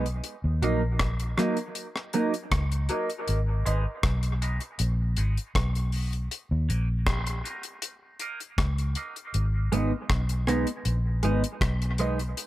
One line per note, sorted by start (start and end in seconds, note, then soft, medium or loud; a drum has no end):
0.00 0.20 B1 medium
0.06 closed hi-hat medium
0.24 closed hi-hat medium
0.44 0.61 D#2 loud
0.62 1.34 A#1 medium
0.62 0.81 F#3 medium
0.62 0.81 A#3 medium
0.62 0.81 D#4 medium
0.62 closed hi-hat medium
0.99 kick medium
0.99 cross-stick loud
0.99 closed hi-hat medium
1.20 closed hi-hat medium
1.37 1.56 F#3 medium
1.37 1.57 A#3 medium
1.37 1.57 D#4 loud
1.37 cross-stick medium
1.37 closed hi-hat medium
1.57 closed hi-hat medium
1.75 closed hi-hat medium
1.96 cross-stick medium
2.13 2.32 F#3 medium
2.13 2.33 A#3 medium
2.13 2.33 D#4 loud
2.13 closed hi-hat medium
2.34 closed hi-hat medium
2.52 2.88 C#2 loud
2.52 kick loud
2.52 cross-stick loud
2.52 closed hi-hat medium
2.72 closed hi-hat soft
2.89 3.08 F#3 medium
2.89 3.08 A#3 medium
2.89 3.09 D#4 medium
2.89 closed hi-hat medium
3.10 closed hi-hat medium
3.28 3.64 G#1 loud
3.28 closed hi-hat medium
3.66 3.85 G#1 medium
3.66 3.84 G#3 medium
3.66 3.85 B3 medium
3.66 3.85 D#4 loud
3.66 closed hi-hat medium
4.03 4.58 B1 medium
4.03 kick loud
4.03 cross-stick loud
4.03 closed hi-hat medium
4.23 closed hi-hat medium
4.42 4.60 G#3 medium
4.42 4.61 B3 medium
4.42 4.61 D#4 medium
4.42 closed hi-hat medium
4.60 closed hi-hat medium
4.79 5.15 A#1 loud
4.79 closed hi-hat medium
5.17 5.36 G#1 medium
5.17 5.36 G#3 medium
5.17 5.36 B3 medium
5.17 5.37 D#4 medium
5.17 closed hi-hat medium
5.37 closed hi-hat medium
5.55 6.27 B1 medium
5.55 kick loud
5.55 cross-stick loud
5.55 closed hi-hat medium
5.75 closed hi-hat medium
5.92 6.12 G#3 medium
5.92 6.12 B3 medium
5.92 6.12 D#4 medium
5.92 open hi-hat medium
6.13 closed hi-hat medium
6.31 closed hi-hat medium
6.51 6.68 D#2 loud
6.69 7.41 A#1 medium
6.69 6.87 F#3 medium
6.69 6.88 A#3 medium
6.69 6.88 D#4 medium
6.69 closed hi-hat medium
7.07 kick medium
7.07 cross-stick medium
7.07 closed hi-hat medium
7.27 closed hi-hat medium
7.44 7.63 F#3 medium
7.44 7.63 A#3 medium
7.44 7.64 D#4 medium
7.44 closed hi-hat medium
7.63 closed hi-hat medium
7.82 closed hi-hat medium
8.20 8.39 F#3 medium
8.20 8.39 A#3 medium
8.20 8.39 D#4 medium
8.20 closed hi-hat medium
8.40 closed hi-hat medium
8.58 8.94 C#2 medium
8.58 kick loud
8.58 cross-stick loud
8.58 closed hi-hat medium
8.78 closed hi-hat medium
8.95 9.14 F#3 medium
8.95 9.15 A#3 medium
8.95 9.15 D#4 medium
8.95 closed hi-hat medium
9.16 closed hi-hat soft
9.34 9.70 G#1 loud
9.34 closed hi-hat medium
9.72 9.91 G#1 medium
9.72 9.90 G#3 medium
9.72 9.91 B3 loud
9.72 9.91 D#4 loud
9.72 closed hi-hat medium
10.10 10.64 B1 medium
10.10 kick loud
10.10 cross-stick loud
10.10 closed hi-hat medium
10.29 closed hi-hat medium
10.47 10.66 G#3 medium
10.47 10.66 B3 medium
10.47 10.67 D#4 loud
10.47 cross-stick medium
10.47 closed hi-hat medium
10.67 closed hi-hat medium
10.85 11.21 A#1 loud
10.85 closed hi-hat medium
11.23 11.42 G#1 medium
11.23 11.41 G#3 medium
11.23 11.42 B3 medium
11.23 11.42 D#4 medium
11.23 closed hi-hat medium
11.44 closed hi-hat medium
11.61 12.33 B1 medium
11.61 kick loud
11.61 cross-stick loud
11.61 closed hi-hat medium
11.82 closed hi-hat medium
11.98 12.17 G#3 medium
11.98 12.18 B3 medium
11.98 12.18 D#4 medium
11.98 closed hi-hat medium
12.19 closed hi-hat medium
12.37 closed hi-hat medium